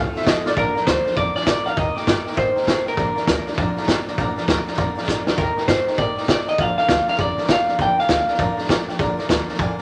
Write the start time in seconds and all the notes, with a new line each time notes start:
Already playing: F3 C4 F4 A4
0.00 F5
0.13 C4 F4 A4, muted upright bass stroke, snare
0.17 E5
0.22 F3, snare
0.26 D2 A4 D#5, kick, snare, hi-hat pedal
0.44 F2 C4 F4 A4 D5, snare
0.55 A#1 A#2 D3 F3 A#3 D4 A#4 D5 F5 A#5, kick, snare
0.75 F3 A#3 D4 A#4 D5 F5 A#5, snare
0.86 D2 F3 A#3 D4 C5 D5 F5 A#5, kick, snare, hi-hat pedal
1.04 F3 A#3 D4 A#4 D5 F5 A#5, snare
1.11 snare
1.16 F2 A#2 D3 F3 A#3 D4 A#4 D5 F5 A#5, kick, snare
1.34 F3 A#3 D4 A#4 D5 F5 G#5, muted upright bass stroke, snare
1.41 snare
1.46 G2 F3 D4 D5 F5 A#5, kick, snare, hi-hat pedal
1.65 A#2 F3 A#3 D4 A#4 D5 F5 A#5, snare
1.76 D#2 D#3 G3 A#3 D#4 A#4 D#5 G5 A#5, kick, snare
1.94 A#3 D#4 A#4 D5 D#5 G5 A#5, muted upright bass stroke, snare
2.05 G2 G3 A#3 A#4 D#5 G5 A#5, kick, snare, hi-hat pedal
2.25 A#3 D#4 A#4 D#5 G5 A#5, muted upright bass stroke, snare
2.32 D#3 G3, snare
2.36 A#2 A#3 D#4 A#4 C5 D#5 G5 C6, kick, snare
2.55 A#3 D#4 A#4 D#5 G5 A#5, muted upright bass stroke, snare
2.62 G3, snare
2.67 C3 A#3 D#4 A#4 D#5 G5 A#5, kick, snare, hi-hat pedal
2.85 G#1 A#3 D#4 A#4 D#5 G5 A#5, snare
2.96 A#1 A#2 D3 F3 A#3 D4 A#4 D5 F5 A#5, kick, snare
3.15 F3 A#3 D4 A#4 D5 F5 A#5, muted upright bass stroke, snare
3.27 D2 F3 A#3 D4 A#4 D5 F5 A#5, kick, snare, hi-hat pedal
3.46 F3 A#3 D4 A#4 D5 F5 A#5, muted upright bass stroke, snare
3.53 snare
3.57 F2 A#2 D3 F3 A#3 D4 A#4 D5 F5 A#5, kick, snare
3.76 F3 A#3 D4 A#4 D5 F5 A#5, muted upright bass stroke, snare
3.83 snare
3.87 G2 F3 A#3 D4 A#4 D5 F5 A#5, kick, snare, hi-hat pedal
4.07 A#2 F3 A#3 D4 A#4 D5 F5 A#5, snare
4.17 A#1 A#2 D3 F3 A#3 D4 A#4 D5 F5 A#5, kick, snare
4.36 F3 A#3 D4 A#4 D5 F5 A#5, snare
4.47 D2 F3 A#3 D4 A#4 D5 F5 A#5, kick, snare, hi-hat pedal
4.65 F3 A#3 D4 A#4 D5 F5 A#5, muted upright bass stroke, snare
4.73 snare
4.77 F2 A#2 D3 F3 A#3 D4 A#4 D5 F5 A#5, kick, snare
4.95 F3 A#3 D4 A#4 D5 F5 A#5, muted upright bass stroke, snare
5.03 F3, snare
5.07 G2 A#3 D4 A#4 D5 F5 A#5, kick, snare, hi-hat pedal
5.25 D2 F3 A#3 D4 A#4 D5 F5 A#5, snare
5.37 D#2 D#3 G3 A#3 D#4 A#4 D#5 G5 A#5, kick, snare
5.56 A#3 D#4 A#4 D#5 G5 A#5, snare
5.67 G2 G3 A#3 D#4 A#4 C5 D#5 G5 A#5, kick, snare, hi-hat pedal
5.86 A#3 D#4 A#4 D#5 G5 A#5, muted upright bass stroke, snare
5.93 snare
5.97 A#2 D#3 G3 A#3 D#4 A#4 D5 D#5 G5 A#5, kick, snare
6.15 A#3 D#4 A#4 D#5 G5 A#5, muted upright bass stroke, snare
6.23 snare
6.27 C3 G3 A#3 D#4 A#4 D5 G5 A#5, kick, snare, hi-hat pedal
6.46 D#3 A#3 D#4 A#4 D#5 G5 A#5, snare
6.58 A#1 A#2 D3 F3 A#3 D4 A#4 D5 F5 A#5, kick, snare
6.77 F3 A#3 D4 A#4 D5 F5 A#5, muted upright bass stroke, snare
6.88 D2 F3 A#3 D4 D5 F5 C6, kick, snare, hi-hat pedal
6.92 A#4
7.06 A#3 D4 A#4 D5 F5 A#5, muted upright bass stroke, snare
7.11 F3, snare
7.17 F2 A#2 D3 F3 A#3 D4 D5 F5 A#5, kick, snare
7.21 A#4 D5
7.38 F3 A#3 D4 A#4 D5 F5 A#5, muted upright bass stroke, snare
7.43 snare
7.48 G2 F3 A#3 D4 D5 F5 A#5, kick, snare, hi-hat pedal
7.66 A#2 F3 A#3 D4 A#4 D5 F5 A#5, snare
7.78 A#1 A#2 D3 F3 A#3 D4 A#4 D5 F5 G5 A#5, kick, snare
7.97 F3 A#3 D4 A#4 D5 F5 A#5, muted upright bass stroke, snare
8.08 D2 F3 A#3 D4 A#4 D5 F5 G#5, kick, snare, hi-hat pedal
8.28 F3 A#3 D4 A#4 D5 F5 A#5, muted upright bass stroke, snare
8.34 snare
8.38 F2 A#2 D3 F3 A#3 D4 A#4 D5 F5 A#5, kick, snare
8.56 F3 A#3 D4 A#4 D5 F5 A#5, snare
8.64 snare
8.68 G2 F3 A#3 D4 A#4 D5 F5 A#5, kick, snare, hi-hat pedal
8.87 A#2 F3 A#3 D4 A#4 D5 F5 G5, snare
8.99 A#1 A#2 D3 F3 A#3 D4 A#4 D5 F5 A#5, kick, snare
9.17 F3 A#3 D4 A#4 D5 F5 A#5, muted upright bass stroke, snare
9.29 D2 F3 A#3 D4 A#4 D5 F5 A#5, kick, snare, hi-hat pedal
9.48 F3 A#3 D4 A#4 D5 F5 A#5, muted upright bass stroke, snare
9.54 snare
9.59 F2 A#2 D3 F3 A#3 D4 A#4 D5 F5 G5 G#5, kick, snare
9.78 A#4 D5, muted upright bass stroke, snare